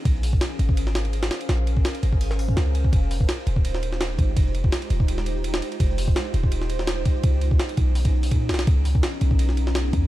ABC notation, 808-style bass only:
X:1
M:4/4
L:1/8
Q:"Swing 16ths" 1/4=167
K:Bbm
V:1 name="808-style bass" clef=bass
B,,,2 z A,,,4 z | B,,,2 z A,,,3 D,,2 | F,,,2 z E,,,4 A,,, | F,,,2 z E,,,4 z |
F,,,2 z E,,,4 z | D,,2 z _C,,3 B,, C,, | D,,2 z _C,,4 _F,, |]